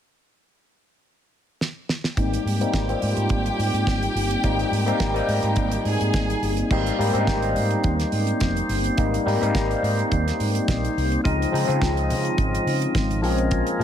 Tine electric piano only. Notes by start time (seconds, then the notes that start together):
2.17 G3 A#3 C4 D#4
2.61 G3 A#3 C4 D#4
2.88 G3 A#3 C4 F4
4.44 G3 A#3 C4 D#4
4.86 G3 A#3 C4 D#4
5.14 G3 A#3 C4 D#4
6.71 G3 A#3 C4 D#4
6.99 G3 A#3 C4 D#4
7.13 G3 A#3 C4 C#4
7.21 D#4
8.98 G3 A#3 C4 D#4
9.25 G3 A#3 C4 D#4
9.41 G3 A#3 C4 D#4
11.24 F3 G#3 C4 D#4
11.52 F3 G#3 C4 D#4
11.67 F3 G#3 C4 F4
13.22 F3 G#3 C4 C#4
13.80 F3 G#3